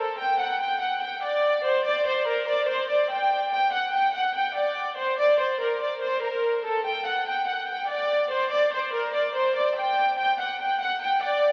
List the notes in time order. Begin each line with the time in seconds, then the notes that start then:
0.00 A4
0.19 G5
0.40 F#5
0.61 G5
0.82 F#5
1.03 G5
1.24 D5
1.65 C5
1.86 D5
2.07 C5
2.28 A#4
2.48 D5
2.69 C5
2.90 D5
3.11 G5
3.53 G5
3.73 F#5
3.94 G5
4.15 F#5
4.36 G5
4.57 D5
4.98 C5
5.19 D5
5.40 C5
5.61 A#4
5.82 D5
6.02 C5
6.23 A#4
6.65 A4
6.86 G5
7.07 F#5
7.28 G5
7.48 F#5
7.69 G5
7.90 D5
8.32 C5
8.52 D5
8.73 C5
8.94 A#4
9.15 D5
9.36 C5
9.57 D5
9.77 G5
10.19 G5
10.40 F#5
10.61 G5
10.82 F#5
11.03 G5
11.23 D5